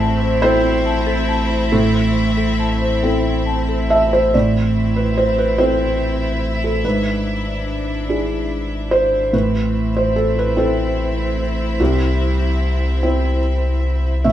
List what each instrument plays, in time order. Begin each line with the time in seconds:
Already playing: sub bass A1, felt piano A2 D5, string section C4 E4 E5
0.00 marimba A5
0.22 marimba C5
0.42 felt piano C4 E4 A4 C5, marimba A4
0.86 marimba A5
1.07 marimba A4
1.29 marimba A5
1.51 marimba C5
1.72 felt piano A2 A4, marimba A4
2.37 marimba A4
2.59 marimba A5
2.82 marimba C5
3.03 felt piano C4 E4 A4, marimba A4
3.46 marimba A5
3.69 marimba A4
3.90 felt piano E5, marimba A5
4.12 marimba C5, felt piano C5
4.34 sub bass A1, felt piano A2 D5, string section C4 E4 E5
4.96 felt piano B4
5.18 felt piano C5
5.39 felt piano B4
5.58 felt piano C4 E4 A4 C5
6.64 felt piano A4
6.84 sub bass G#1, felt piano G#2 B4, string section D4
8.09 felt piano D4 E4 G#4
8.91 felt piano C5
9.33 sub bass A1, felt piano A2 B4, string section C4 E4 E5
9.97 felt piano C5
10.16 felt piano A4
10.39 felt piano B4
10.56 felt piano C4 E4 A4 C5
11.80 felt piano C2 G4, sub bass C2
13.03 felt piano C4 E4 C5
14.24 sub bass A1, felt piano A2 E5, string section C4 E4 E5